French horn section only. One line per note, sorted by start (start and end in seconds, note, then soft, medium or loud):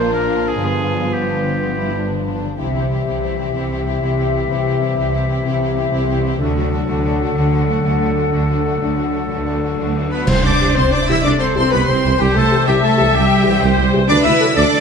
0.00 2.42 F3 medium
0.00 0.57 A#4 medium
0.62 2.39 B4 soft
2.59 6.37 E3 soft
2.59 6.37 G4 soft
6.39 10.08 F#3 medium
6.39 10.08 A4 medium
10.61 10.68 E3 medium
10.61 10.67 G4 medium
11.09 11.15 E3 medium
11.09 11.15 G4 medium
11.56 11.62 E3 medium
11.56 11.62 G4 medium
12.05 12.11 E3 medium
12.05 12.12 G4 medium
12.52 12.58 E3 medium
12.52 12.58 G4 medium
12.97 13.03 E3 medium
12.97 13.04 G4 medium
13.44 13.51 E3 medium
13.44 13.50 G4 medium
13.94 14.00 E3 medium
13.94 14.00 G4 medium
14.40 14.46 F#3 medium
14.40 14.46 A4 medium